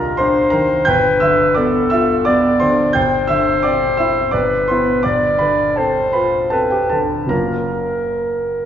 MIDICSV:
0, 0, Header, 1, 3, 480
1, 0, Start_track
1, 0, Tempo, 687285
1, 612, Time_signature, 3, 2, 24, 8
1, 2541, Tempo, 711744
1, 3981, Tempo, 750000
1, 4461, Tempo, 789474
1, 5756, End_track
2, 0, Start_track
2, 0, Title_t, "Clarinet"
2, 0, Program_c, 0, 71
2, 134, Note_on_c, 0, 72, 55
2, 617, Note_on_c, 0, 71, 56
2, 627, Note_off_c, 0, 72, 0
2, 1098, Note_on_c, 0, 69, 51
2, 1108, Note_off_c, 0, 71, 0
2, 1579, Note_on_c, 0, 74, 53
2, 1590, Note_off_c, 0, 69, 0
2, 2059, Note_off_c, 0, 74, 0
2, 2063, Note_on_c, 0, 72, 60
2, 3010, Note_on_c, 0, 71, 50
2, 3020, Note_off_c, 0, 72, 0
2, 3493, Note_on_c, 0, 74, 52
2, 3503, Note_off_c, 0, 71, 0
2, 3979, Note_on_c, 0, 72, 50
2, 3989, Note_off_c, 0, 74, 0
2, 4455, Note_off_c, 0, 72, 0
2, 4459, Note_on_c, 0, 71, 42
2, 4761, Note_off_c, 0, 71, 0
2, 4941, Note_on_c, 0, 70, 37
2, 5756, Note_off_c, 0, 70, 0
2, 5756, End_track
3, 0, Start_track
3, 0, Title_t, "Grand piano"
3, 0, Program_c, 1, 0
3, 0, Control_c, 1, 64, 127
3, 0, Note_on_c, 1, 36, 46
3, 0, Note_on_c, 1, 51, 36
3, 0, Note_on_c, 1, 62, 38
3, 0, Note_on_c, 1, 65, 37
3, 0, Note_on_c, 1, 70, 49
3, 0, Note_on_c, 1, 74, 46
3, 0, Note_on_c, 1, 82, 65
3, 0, Note_on_c, 1, 86, 66
3, 117, Note_off_c, 1, 70, 0
3, 120, Note_on_c, 1, 84, 67
3, 128, Note_off_c, 1, 82, 0
3, 128, Note_on_c, 1, 72, 52
3, 140, Note_off_c, 1, 62, 0
3, 140, Note_on_c, 1, 62, 42
3, 279, Note_off_c, 1, 65, 0
3, 351, Note_on_c, 1, 82, 65
3, 353, Note_off_c, 1, 72, 0
3, 362, Note_on_c, 1, 70, 47
3, 366, Note_off_c, 1, 84, 0
3, 372, Note_off_c, 1, 51, 0
3, 372, Note_on_c, 1, 51, 35
3, 518, Note_off_c, 1, 62, 0
3, 580, Note_off_c, 1, 36, 0
3, 589, Note_off_c, 1, 70, 0
3, 593, Note_on_c, 1, 91, 80
3, 600, Note_off_c, 1, 82, 0
3, 603, Note_on_c, 1, 79, 56
3, 611, Note_off_c, 1, 51, 0
3, 613, Note_on_c, 1, 31, 47
3, 625, Control_c, 1, 64, 0
3, 627, Note_off_c, 1, 86, 0
3, 629, Note_off_c, 1, 74, 0
3, 716, Control_c, 1, 64, 127
3, 830, Note_off_c, 1, 79, 0
3, 839, Note_on_c, 1, 88, 66
3, 842, Note_off_c, 1, 91, 0
3, 848, Note_on_c, 1, 76, 54
3, 854, Note_on_c, 1, 50, 37
3, 1075, Note_off_c, 1, 76, 0
3, 1079, Note_on_c, 1, 86, 63
3, 1088, Note_off_c, 1, 88, 0
3, 1088, Note_on_c, 1, 74, 44
3, 1096, Note_on_c, 1, 59, 37
3, 1241, Note_off_c, 1, 50, 0
3, 1317, Note_off_c, 1, 74, 0
3, 1327, Note_on_c, 1, 88, 65
3, 1329, Note_off_c, 1, 86, 0
3, 1335, Note_on_c, 1, 76, 50
3, 1344, Note_on_c, 1, 65, 37
3, 1483, Note_off_c, 1, 59, 0
3, 1562, Note_off_c, 1, 76, 0
3, 1571, Note_on_c, 1, 86, 73
3, 1574, Note_off_c, 1, 88, 0
3, 1579, Note_on_c, 1, 74, 52
3, 1587, Note_on_c, 1, 59, 39
3, 1728, Note_off_c, 1, 65, 0
3, 1804, Note_off_c, 1, 74, 0
3, 1813, Note_on_c, 1, 84, 67
3, 1817, Note_off_c, 1, 86, 0
3, 1823, Note_on_c, 1, 72, 50
3, 1832, Note_on_c, 1, 50, 37
3, 1970, Note_off_c, 1, 59, 0
3, 2034, Note_off_c, 1, 31, 0
3, 2046, Note_off_c, 1, 72, 0
3, 2047, Note_on_c, 1, 91, 73
3, 2055, Note_on_c, 1, 79, 57
3, 2058, Note_off_c, 1, 84, 0
3, 2065, Note_on_c, 1, 31, 45
3, 2067, Note_off_c, 1, 50, 0
3, 2075, Control_c, 1, 64, 0
3, 2166, Control_c, 1, 64, 127
3, 2281, Note_off_c, 1, 79, 0
3, 2287, Note_on_c, 1, 88, 64
3, 2294, Note_off_c, 1, 91, 0
3, 2295, Note_on_c, 1, 76, 50
3, 2305, Note_on_c, 1, 50, 34
3, 2521, Note_off_c, 1, 76, 0
3, 2534, Note_off_c, 1, 88, 0
3, 2534, Note_on_c, 1, 86, 66
3, 2543, Note_on_c, 1, 74, 47
3, 2550, Note_on_c, 1, 60, 38
3, 2683, Note_off_c, 1, 50, 0
3, 2760, Note_off_c, 1, 74, 0
3, 2767, Note_on_c, 1, 88, 60
3, 2772, Note_off_c, 1, 86, 0
3, 2774, Note_on_c, 1, 76, 45
3, 2783, Note_on_c, 1, 64, 34
3, 2923, Note_off_c, 1, 60, 0
3, 2989, Note_off_c, 1, 31, 0
3, 2996, Note_on_c, 1, 86, 63
3, 2997, Note_off_c, 1, 76, 0
3, 3002, Note_on_c, 1, 74, 50
3, 3010, Note_off_c, 1, 88, 0
3, 3012, Note_on_c, 1, 31, 44
3, 3018, Note_off_c, 1, 64, 0
3, 3028, Control_c, 1, 64, 0
3, 3131, Control_c, 1, 64, 127
3, 3232, Note_off_c, 1, 74, 0
3, 3242, Note_on_c, 1, 84, 59
3, 3246, Note_off_c, 1, 86, 0
3, 3252, Note_on_c, 1, 72, 43
3, 3258, Note_on_c, 1, 59, 31
3, 3264, Note_on_c, 1, 64, 35
3, 3473, Note_off_c, 1, 59, 0
3, 3477, Note_off_c, 1, 64, 0
3, 3477, Note_off_c, 1, 72, 0
3, 3478, Note_on_c, 1, 86, 65
3, 3480, Note_off_c, 1, 31, 0
3, 3485, Note_on_c, 1, 74, 49
3, 3489, Note_off_c, 1, 84, 0
3, 3497, Note_on_c, 1, 31, 41
3, 3508, Control_c, 1, 64, 0
3, 3613, Control_c, 1, 64, 127
3, 3714, Note_off_c, 1, 74, 0
3, 3720, Note_on_c, 1, 83, 55
3, 3728, Note_off_c, 1, 86, 0
3, 3731, Note_on_c, 1, 71, 42
3, 3738, Note_on_c, 1, 50, 32
3, 3960, Note_off_c, 1, 71, 0
3, 3972, Note_off_c, 1, 83, 0
3, 3972, Note_on_c, 1, 81, 46
3, 3980, Note_on_c, 1, 69, 34
3, 3986, Note_on_c, 1, 60, 33
3, 4122, Note_off_c, 1, 50, 0
3, 4201, Note_off_c, 1, 69, 0
3, 4209, Note_on_c, 1, 83, 51
3, 4213, Note_off_c, 1, 81, 0
3, 4215, Note_on_c, 1, 71, 39
3, 4223, Note_on_c, 1, 65, 31
3, 4366, Note_off_c, 1, 60, 0
3, 4442, Note_off_c, 1, 71, 0
3, 4447, Note_on_c, 1, 81, 53
3, 4456, Note_on_c, 1, 69, 42
3, 4457, Note_off_c, 1, 83, 0
3, 4461, Note_on_c, 1, 60, 30
3, 4567, Note_off_c, 1, 69, 0
3, 4570, Note_on_c, 1, 79, 45
3, 4572, Note_off_c, 1, 81, 0
3, 4579, Note_on_c, 1, 67, 35
3, 4604, Note_off_c, 1, 65, 0
3, 4687, Note_on_c, 1, 81, 51
3, 4689, Note_off_c, 1, 67, 0
3, 4692, Note_off_c, 1, 79, 0
3, 4695, Note_on_c, 1, 69, 34
3, 4703, Note_on_c, 1, 50, 27
3, 4840, Note_off_c, 1, 60, 0
3, 4910, Note_on_c, 1, 30, 34
3, 4913, Note_off_c, 1, 31, 0
3, 4918, Note_on_c, 1, 54, 24
3, 4919, Note_off_c, 1, 69, 0
3, 4923, Note_on_c, 1, 58, 25
3, 4928, Note_on_c, 1, 82, 50
3, 4929, Note_on_c, 1, 61, 26
3, 4933, Note_off_c, 1, 81, 0
3, 4935, Note_on_c, 1, 70, 36
3, 4936, Note_on_c, 1, 65, 25
3, 4940, Note_off_c, 1, 50, 0
3, 4950, Control_c, 1, 64, 0
3, 5058, Control_c, 1, 64, 127
3, 5756, Note_off_c, 1, 30, 0
3, 5756, Note_off_c, 1, 54, 0
3, 5756, Note_off_c, 1, 58, 0
3, 5756, Note_off_c, 1, 61, 0
3, 5756, Note_off_c, 1, 65, 0
3, 5756, Note_off_c, 1, 70, 0
3, 5756, Note_off_c, 1, 82, 0
3, 5756, End_track
0, 0, End_of_file